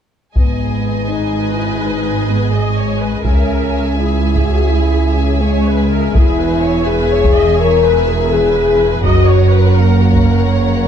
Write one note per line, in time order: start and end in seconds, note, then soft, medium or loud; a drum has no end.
0.36 3.23 G#1 soft
0.36 3.23 G#2 soft
0.36 1.05 B3 medium
0.36 3.23 G#4 soft
0.36 3.23 D#5 soft
0.36 3.22 G#5 soft
0.36 taiko soft
1.08 1.57 D#4 soft
1.08 2.50 B4 soft
1.53 1.79 E4 soft
1.78 2.28 D#4 medium
2.28 2.53 B3 soft
2.51 3.25 G#3 medium
2.51 2.77 D#5 soft
2.76 3.01 C#5 soft
3.00 3.25 B4 soft
3.24 6.12 C#2 soft
3.24 3.96 C#4 medium
3.24 6.12 G#4 soft
3.24 3.97 A#4 soft
3.24 6.12 E5 soft
3.24 6.11 G#5 soft
3.24 taiko soft
3.97 4.47 E4 medium
3.97 5.40 G#4 soft
4.35 taiko soft
4.45 4.70 F#4 medium
4.68 5.18 E4 medium
5.15 5.41 C#4 medium
5.41 6.15 G#3 medium
5.41 5.68 C#5 soft
5.68 5.92 B4 soft
5.90 6.15 A#4 soft
6.15 9.01 E1 soft
6.15 9.01 E2 soft
6.15 6.87 E4 medium
6.15 6.39 G#4 soft
6.15 9.01 G#4 soft
6.15 9.01 E5 soft
6.15 9.01 G#5 soft
6.15 taiko soft
6.39 6.64 B4 soft
6.62 6.88 C#5 soft
6.86 7.59 G#4 medium
6.86 7.11 B4 medium
7.11 7.36 C#5 medium
7.25 taiko soft
7.36 7.60 D#5 medium
7.58 8.31 A#4 medium
7.58 7.83 C#5 medium
7.83 8.08 B4 medium
8.09 8.33 G#4 soft
8.30 8.86 G#4 medium
8.30 9.04 B4 medium
9.03 10.88 F#1 medium
9.03 10.88 F#2 medium
9.03 9.75 F#4 medium
9.03 10.88 A#4 medium
9.03 10.88 C#5 soft
9.03 9.29 D#5 medium
9.03 10.88 F#5 soft
9.03 taiko soft
9.28 9.53 C#5 medium
9.52 9.77 B4 medium
9.76 10.46 A#3 medium
9.76 10.01 A#4 soft
10.00 10.25 F#4 soft
10.13 taiko soft
10.25 10.49 A#4 soft
10.48 10.88 A#3 medium
10.48 10.88 C#5 soft